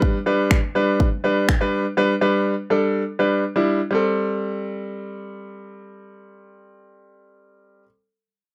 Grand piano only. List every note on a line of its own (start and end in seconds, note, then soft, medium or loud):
0.00 0.17 G3 medium
0.00 0.17 D4 medium
0.00 0.17 B4 loud
0.26 0.58 G3 medium
0.26 0.58 D4 medium
0.26 0.58 B4 medium
0.75 1.07 G3 medium
0.75 1.07 D4 medium
0.75 1.07 B4 loud
1.24 1.47 G3 medium
1.24 1.48 D4 medium
1.24 1.48 B4 medium
1.61 1.84 G3 medium
1.61 1.84 D4 medium
1.61 1.84 B4 loud
1.97 2.13 G3 medium
1.97 2.13 D4 medium
1.97 2.13 B4 medium
2.21 2.53 G3 medium
2.21 2.53 D4 medium
2.21 2.53 B4 medium
2.70 3.02 G3 medium
2.70 3.02 D4 medium
2.70 3.02 A4 medium
3.19 3.43 G3 medium
3.19 3.43 D4 medium
3.19 3.43 B4 medium
3.56 3.79 G3 medium
3.56 3.79 D4 medium
3.56 3.80 E4 medium
3.91 7.82 G3 medium
3.91 7.84 C4 medium
3.91 7.86 A4 medium